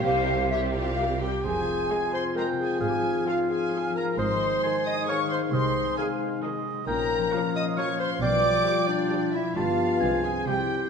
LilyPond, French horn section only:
\new Staff \with { instrumentName = "French horn section" } { \time 3/4 \key f \minor \tempo 4 = 133 << { r2. | f'2.~ | f'2. | ees'2.~ |
ees'2. | des'2. | f'2. | g'4 aes'4 e'4 | } \\ { r2. | c'2.~ | c'2. | aes2.~ |
aes2. | f2. | g2. | b4 c'2 | } >> }